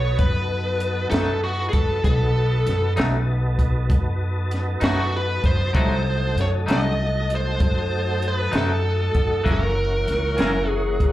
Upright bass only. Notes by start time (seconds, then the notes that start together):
Already playing: B1
0.19 F#2
1.11 F#2
1.74 F#2
2.04 B1
2.67 F#2
2.98 B1
3.89 F#2
4.82 F#2
5.44 F#2
5.75 C2
6.36 F#2
6.68 C2
7.60 F#2
8.53 F#2
9.15 F#2
9.46 F#1
10.08 C#2
10.39 F#1